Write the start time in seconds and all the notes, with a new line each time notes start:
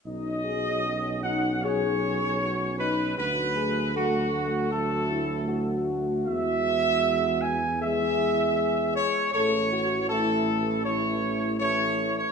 0.05 B1 F#3 C#4 D#4 D#5
0.45 G#4
0.86 F#4
1.24 D#4 F#5
1.63 F#3 C#4 G#4 C#5
2.41 F#4
2.79 D#4 B4
3.17 D2 F#3 A3 F#4 B4
3.56 G#4
3.95 F#3 A3 F#4 A4
4.72 F#3 A3 F#4 A4
5.10 E4
5.48 F#4
6.26 E2 E3 G#3 E5
7.42 G#5
7.81 E3 G#3 G#4 E5
8.95 C#5
9.33 A1 E3 A3 A4 C#5
9.72 F#4
10.09 E3 A3 E4 A4
10.84 E3 A3 C#5
11.60 E3 A3 C#5
12.18 C#5